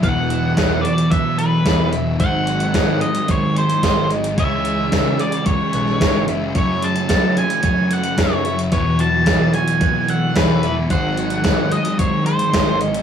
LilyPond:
<<
  \new Staff \with { instrumentName = "Lead electric guitar" } { \time 4/4 \key e \mixolydian \tempo 4 = 110 fis''4. d''8 e''8 b'4 r8 | fis''4. dis''8 cis''8 bis'4 r8 | e''4. d''8 cis''4. r8 | cis''8 a''4 gis''4 fis''8 cis''8. r16 |
cis''8 a''4 gis''4 fis''8 b'8. r16 | fis''4. dis''8 cis''8 bis'4 r8 | }
  \new Staff \with { instrumentName = "Clean electric guitar" } { \time 4/4 \key e \mixolydian b'8 fis'8 gis'8 fis'8 b'8 a'8 a'8 e''8 | bis'8 fis'8 gis'8 fis'8 bis'8 gis'8 gis'8 dis''8 | cis''8 gis'8 a'8 gis'8 cis''8 b'8 b'8 e''8 | cis''8 gis'8 a'8 gis'8 cis''8 a'8 a'8 e''8 |
b'8 fis'8 gis'8 fis'8 b'8 a'8 a'8 e''8 | bis'8 fis'8 gis'8 fis'8 bis'8 gis'8 gis'8 dis''8 | }
  \new Staff \with { instrumentName = "Overdriven electric guitar" } { \clef bass \time 4/4 \key e \mixolydian <e fis b e'>1 | <gis, dis fis bis dis'>1 | <cis e gis cis'>1 | <fis, cis fis a cis'>1 |
<e fis b e'>1 | <gis, dis fis bis dis'>1 | }
  \new Staff \with { instrumentName = "Distorted electric guitar" } { \clef bass \time 4/4 \key e \mixolydian <e, b, e>4 <e, b, e>8 <b, e>4. <e, b, e>8 <b, e>8 | <gis, dis gis>4 <gis, dis gis>8 <dis gis>4. <gis, dis gis>8 <dis gis>8 | <cis gis cis'>4 <cis gis cis'>8 <gis cis'>4. <cis gis cis'>8 <gis cis'>8 | <fis, cis fis>4 <fis, cis fis>8 <cis fis>4. <fis, cis fis>8 <cis fis>8 |
<e, b, e>4 <e, b, e>8 <b, e>4. <e, b, e>8 <b, e>8 | <gis, dis gis>4 <gis, dis gis>8 <dis gis>4. <gis, dis gis>8 <dis gis>8 | }
  \new Staff \with { instrumentName = "Picked electric bass" } { \clef bass \time 4/4 \key e \mixolydian e,,4 e,8 r4. e,,4 | gis,,4 gis,8 r4. gis,,4 | cis,4 cis8 r4 b,,8 gis,,8 fis,,8 | fis,4 fis8 r4. fis,4 |
e,4 e8 r4. e,4 | gis,,4 gis,8 r4. gis,,4 | }
  \new DrumStaff \with { instrumentName = "Drums" } \drummode { \time 4/4 <hh bd>8 hh8 <hh bd sn>8 hh16 hh16 <hh bd>8 hh8 <hh bd sn>8 hh8 | <hh bd>8 hh16 hh16 <hh bd sn>8 hh16 hh16 <hh bd>8 hh16 hh16 <hh bd sn>8 hh16 hh16 | <hh bd>8 hh8 <hh bd sn>8 hh16 hh16 <hh bd>8 hh16 sn16 <hh bd sn>8 hh8 | <hh bd>8 hh16 hh16 <hh bd sn>8 hh16 hh16 <hh bd>8 hh16 hh16 <hh bd sn>8 hh16 hh16 |
<hh bd>8 hh8 <hh bd sn>8 hh16 hh16 <hh bd>8 hh8 <hh bd sn>8 hh8 | <hh bd>8 hh16 hh16 <hh bd sn>8 hh16 hh16 <hh bd>8 hh16 hh16 <hh bd sn>8 hh16 hh16 | }
>>